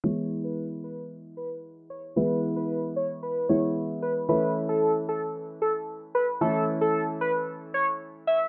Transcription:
<<
  \new Staff \with { instrumentName = "Analog synth lead" } { \time 4/4 \key e \mixolydian \tempo 4 = 113 cis''8 r16 b'8 r16 b'16 r8. b'16 r8. cis''16 r16 | b'8 r16 b'8 r16 cis''16 r16 b'8 cis''16 r8. b'16 r16 | b'8 r16 a'8 r16 a'16 r8. a'16 r8. b'16 r16 | a'8 r16 a'8 r16 b'16 r8. cis''16 r8. e''16 r16 | }
  \new Staff \with { instrumentName = "Grand piano" } { \time 4/4 \key e \mixolydian <e gis b e'>1 | <e gis b e'>2~ <e gis b e'>8 <e gis b e'>4. | <e a cis' e'>1 | <e a cis' e'>1 | }
>>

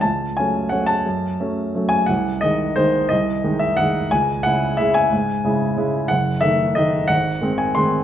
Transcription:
<<
  \new Staff \with { instrumentName = "Grand piano" } { \time 3/4 \key cis \minor \tempo 4 = 179 a''4 gis''4 fis''8 a''8~ | a''2~ a''8 gis''8 | fis''4 dis''4 bis'4 | dis''4. e''8 fis''4 |
gis''4 fis''4 e''8 gis''8~ | gis''2~ gis''8 r8 | fis''4 e''4 dis''4 | fis''4. gis''8 bis''4 | }
  \new Staff \with { instrumentName = "Grand piano" } { \clef bass \time 3/4 \key cis \minor cis,4 <fis a cis'>4 <fis a cis'>4 | fis,4 <fis a cis'>4 <fis a cis'>4 | bis,,4 <dis gis dis'>4 <dis gis dis'>4 | bis,,4 <dis gis dis'>4 <dis gis dis'>4 |
cis,4 <cis gis e'>4 <cis gis e'>4 | gis,4 <cis gis e'>4 <cis gis e'>4 | fis,,4 <dis a dis'>4 <dis a dis'>4 | gis,,4 <dis gis bis>4 <dis gis bis>4 | }
>>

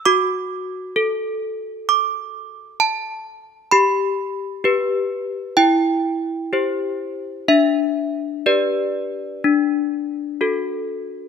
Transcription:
\new Staff \with { instrumentName = "Handbells" } { \time 4/4 \key g \major \tempo 4 = 64 << { d'''2 d'''4 a''8 r8 | b''2 g''2 | e''4 d''2~ d''8 r8 | } \\ { fis'4 a'2. | g'4 <g' b'>4 e'4 <g' c''>4 | d'4 <g' b'>4 d'4 <fis' a'>4 | } >> }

